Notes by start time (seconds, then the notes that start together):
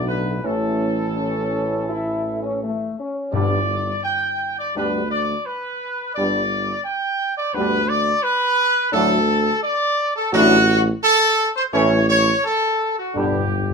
Already playing: B1 A2 F#3 A3 D4
0.07 B4
0.43 A1 A2 E3 A3 C#4 A4
1.16 C#4
1.89 E4
2.43 C#4
2.63 A3
2.99 C#4
3.32 G1 G2 G3 B3 D4 D5
4.03 G5
4.59 D5
4.75 D2 G2 G3 B3 D4 B4
5.11 D5
5.46 B4
6.14 G1 G2 G3 B3 D4 D5
6.84 G5
7.37 D5
7.53 D2 G2 G3 B3 D4 B4
7.88 D5
8.23 B4
8.92 D2 A2 F#3 A3 D4 A4
9.62 D5
10.16 A4
10.32 A1 A2 F#3 A3 D4 F#4
11.02 A4
11.56 C5
11.72 A1 A2 E3 A3 C#4 C#5
12.09 C#5
12.44 A4
12.98 F#4
13.14 G1 G2 D3 G3 D4 G4
13.18 B3
13.24 G2
13.32 G2
13.39 G2
13.47 G2
13.54 G2
13.62 G2
13.71 G2